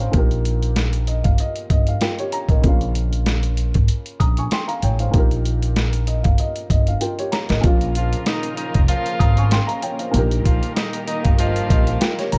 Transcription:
Already playing: C#4 F4 C#5 G5 G#5 A#5 C6 C#6 D#6
0.00 C5 F5
0.11 A#1 A#2 A#3 D#4, kick, closed hi-hat
0.16 G4 A#4
0.31 closed hi-hat
0.45 closed hi-hat
0.63 closed hi-hat
0.76 snare, closed hi-hat
0.93 closed hi-hat
1.07 D#5, closed hi-hat
1.24 G1 F5, kick, closed hi-hat
1.38 D#5, closed hi-hat
1.56 closed hi-hat
1.70 G1 D#5, kick, closed hi-hat
1.87 F5, closed hi-hat
2.01 F4 A#4 G5, snare, closed hi-hat
2.19 G4 C#5, closed hi-hat
2.32 A#5, closed hi-hat
2.49 A1 A#4 D#5, kick, closed hi-hat
2.62 A#1 C#3 A#3 C#4, kick, closed hi-hat
2.67 F4 F5
2.81 closed hi-hat
2.95 closed hi-hat
3.13 closed hi-hat
3.26 snare, closed hi-hat
3.43 closed hi-hat
3.57 closed hi-hat
3.74 G#1, kick, closed hi-hat
3.88 closed hi-hat
4.06 closed hi-hat
4.20 A#1 A#5 D#6, kick, closed hi-hat
4.37 G#5 C#6, closed hi-hat
4.51 G5 C6, snare, closed hi-hat
4.68 F5 A#5, closed hi-hat
4.82 A1 C#5 G5, closed hi-hat
4.99 C5 F5, closed hi-hat
5.11 A#1 A#2 A#3 D#4, kick, closed hi-hat
5.16 G4 A#4
5.31 closed hi-hat
5.45 closed hi-hat
5.62 closed hi-hat
5.76 snare, closed hi-hat
5.93 closed hi-hat
6.07 D#5, closed hi-hat
6.24 G1 F5, kick, closed hi-hat
6.38 D#5, closed hi-hat
6.56 closed hi-hat
6.70 G1 D#5, kick, closed hi-hat
6.87 F5, closed hi-hat
7.01 F4 A#4 G5, closed hi-hat
7.19 G4 C#5, closed hi-hat
7.32 A#5, snare, closed hi-hat
7.49 A1 A#4 D#5, snare, closed hi-hat
7.61 A#1 A#2 C#3 F3 A#3 C#4 F4 A#4, kick, closed hi-hat
7.66 F4 F5
7.81 closed hi-hat
7.95 F3 F4, closed hi-hat
8.13 closed hi-hat
8.26 D#3 D#4, snare, closed hi-hat
8.43 closed hi-hat
8.56 D#3 D#4, closed hi-hat
8.74 F1, kick, closed hi-hat
8.88 F3 F4, closed hi-hat
9.06 closed hi-hat
9.19 G#1 A#5 D#6, kick, closed hi-hat
9.37 G#5 C#6, closed hi-hat
9.51 G5 C6, snare, closed hi-hat
9.67 F5 A#5, closed hi-hat
9.82 C#5 G5, closed hi-hat
9.99 C5 F5, closed hi-hat
10.11 A#1 A#2 D#3 G3 A#3 D#4 G4 A#4, closed hi-hat
10.16 G4 A#4
10.31 closed hi-hat
10.45 A#1 F3 F4, kick, closed hi-hat
10.63 closed hi-hat
10.76 D#3 D#4, snare, closed hi-hat
10.93 closed hi-hat
11.07 D#3 D#4 D#5, closed hi-hat
11.24 G1 F5, kick, closed hi-hat
11.39 F3 F4 D#5, closed hi-hat
11.56 closed hi-hat
11.70 A#1 D#5, kick, closed hi-hat
11.87 F5, closed hi-hat
12.01 F4 A#4 G5, snare, closed hi-hat
12.19 G4 C#5, snare, closed hi-hat
12.32 A#1 A#5, closed hi-hat

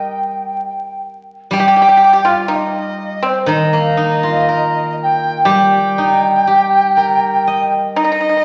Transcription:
Already playing: G3 G4 A#4 D#5 G5
1.51 G3 G4
1.55 G5
1.60 G4
1.68 G4
1.76 G4
1.82 G4
1.89 G4
1.97 G4
2.04 G4
2.13 G4
2.25 F4 F5
2.44 F5
2.48 D#4
2.55 D#5
3.22 C4 C5
3.46 D#3 D#4
3.53 D#5
3.73 A#3
3.97 D#4
4.23 F4
4.49 A#4
5.02 G5
5.45 G3 G4
5.52 G5
5.98 D#4
6.47 G4
6.97 A#4
7.47 D#5
7.96 D#4 D#5
8.04 D#4
8.12 D#4
8.20 D#4
8.29 D#4
8.37 D#4

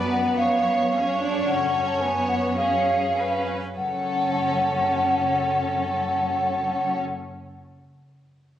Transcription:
Already playing: F#2 B3 B4 D5
0.10 F#5
0.36 C#5 F5
0.92 C#4 G#4 C#5
1.20 D4
1.46 F#1 F#2 C#4 A4 F#5
1.87 A5
2.00 B3 C#5 G#5
2.29 F#5
2.56 C#4 G#4 C#5 F5
3.15 C#4 G#4 B4
3.77 F#1 F#2 C#4 A4 C#5 F#5

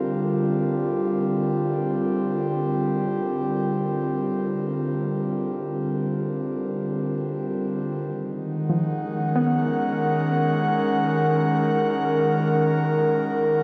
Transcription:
Already playing: D3 G3 C4 F4 A#4
8.02 D#3
8.23 G#3
8.39 F#5
8.69 F3 C#4
8.93 A#4
9.36 B3

